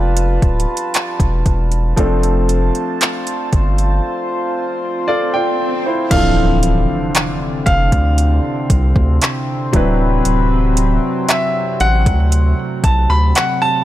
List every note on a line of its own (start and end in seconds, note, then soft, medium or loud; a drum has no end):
0.00 0.38 F1 medium
0.00 1.93 F3 medium
0.00 1.93 G3 medium
0.00 1.94 B3 medium
0.00 1.94 D4 medium
0.00 1.94 F4 medium
0.00 1.95 G4 medium
0.00 1.94 B4 medium
0.00 6.07 D5 medium
0.00 1.95 A5 medium
0.17 closed hi-hat medium
0.42 0.66 D1 medium
0.42 kick medium
0.42 closed hi-hat soft
0.60 closed hi-hat medium
0.77 closed hi-hat medium
0.94 clap loud
0.94 closed hi-hat medium
1.20 1.43 E1 medium
1.20 kick medium
1.20 closed hi-hat soft
1.46 1.94 E1 medium
1.46 kick medium
1.46 closed hi-hat soft
1.72 closed hi-hat medium
1.96 2.71 F1 loud
1.96 6.07 F3 medium
1.96 6.07 A3 medium
1.96 6.08 C4 medium
1.96 6.08 D4 medium
1.96 6.07 F4 medium
1.96 5.05 A4 medium
1.96 6.07 C5 medium
1.96 kick loud
1.96 closed hi-hat medium
1.96 swell medium
2.23 closed hi-hat soft
2.49 closed hi-hat medium
2.75 closed hi-hat soft
3.01 clap loud
3.01 closed hi-hat medium
3.27 closed hi-hat medium
3.53 4.00 G1 medium
3.53 kick medium
3.53 closed hi-hat soft
3.78 closed hi-hat soft
5.08 5.33 A4 medium
5.08 5.32 D5 medium
5.08 5.33 F5 medium
5.34 5.83 F4 medium
5.34 5.83 D5 medium
5.34 6.14 G5 loud
5.86 6.35 E4 medium
5.86 6.35 C5 medium
6.11 6.85 D1 loud
6.11 13.83 C3 medium
6.11 9.70 D3 medium
6.11 9.70 E3 medium
6.11 9.69 C4 medium
6.11 13.83 C4 medium
6.11 9.70 D4 medium
6.11 9.70 A4 medium
6.11 7.64 F5 loud
6.11 kick loud
6.11 closed hi-hat medium
6.11 crash loud
6.11 impact medium
6.17 9.72 F3 medium
6.63 closed hi-hat medium
7.15 clap loud
7.15 closed hi-hat medium
7.66 7.90 F1 loud
7.66 9.69 F5 loud
7.66 kick medium
7.66 closed hi-hat medium
7.92 8.40 D2 loud
7.92 kick loud
7.92 closed hi-hat medium
8.18 closed hi-hat medium
8.70 8.93 C2 medium
8.70 kick loud
8.70 closed hi-hat medium
8.96 9.19 D2 loud
8.96 kick loud
9.22 clap loud
9.22 closed hi-hat medium
9.73 10.21 D1 loud
9.73 13.83 F#3 medium
9.73 13.83 C4 medium
9.73 13.84 D4 medium
9.73 13.84 E4 medium
9.73 13.84 B4 medium
9.73 kick loud
9.73 closed hi-hat medium
10.25 10.99 D1 loud
10.25 closed hi-hat medium
10.77 closed hi-hat medium
11.29 11.82 E5 loud
11.29 clap loud
11.29 closed hi-hat medium
11.80 12.08 A1 medium
11.80 13.84 A3 medium
11.80 12.87 F#5 loud
11.80 closed hi-hat medium
12.06 12.54 D2 medium
12.06 kick loud
12.06 closed hi-hat medium
12.32 closed hi-hat medium
12.84 13.07 B1 loud
12.84 13.10 A5 loud
12.84 kick loud
12.84 closed hi-hat medium
13.10 13.33 D2 loud
13.10 13.34 B5 loud
13.35 13.60 F#5 loud
13.35 clap loud
13.35 closed hi-hat medium
13.62 13.84 A5 loud